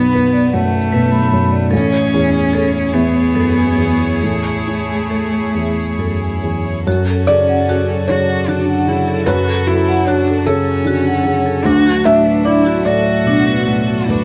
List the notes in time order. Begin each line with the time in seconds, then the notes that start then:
Already playing: B1 F#2 F#3 B3 F#4 B4
0.13 B4
0.33 D5
0.52 F#2 A3 F#5
0.92 B2 B4
1.12 B5
1.31 F#2 B5
1.51 D5
1.71 A1 C#4 E4 G#4 A4 C#5
1.92 C#5
2.12 E2 C#5
2.32 G#5
2.53 A4 C#5
2.74 C#5
2.93 E2 B3 E5
3.35 F#2 A4
3.56 G#5
3.78 E2 G#5
4.00 C#5
4.22 A1 A3 A4
4.44 C#5
4.66 E4 C#5
4.89 G#5
5.10 A4 C#5
5.32 C#5
5.55 E2 E5
5.98 F#2 A4
6.22 G#5
6.43 E2 G#5
6.66 C#5
6.85 F#2 F#3 C#4 F#4 A4
7.08 A4
7.27 C#3 A4 D5
7.49 F#5
7.68 F#4 A4
7.90 A4
8.08 C#3 F#4 C#5
8.48 D3 D4 F#4
8.69 F#5
8.87 C#3 E4 F#5
9.08 A4
9.26 F#2 F#4 B4
9.48 A4
9.67 E4 F#4 A4
9.88 F#5
10.07 D4 F#4 C#5
10.28 A4
10.45 C#3 C#4 A4 C#5
10.85 D3 F#4
11.07 F#5
11.24 C#3 F#5
11.46 A4
11.65 D2 F#3 D4 F#4 A4
11.85 F#4
12.05 A2 D4 F#4 E5
12.26 B4
12.45 D4 E4 D5
12.66 F#4
12.85 A2 F#4 A4 D5
13.26 B2 D4
13.47 B4
13.67 A2 B4
13.89 F#4
14.08 D2 D4 B4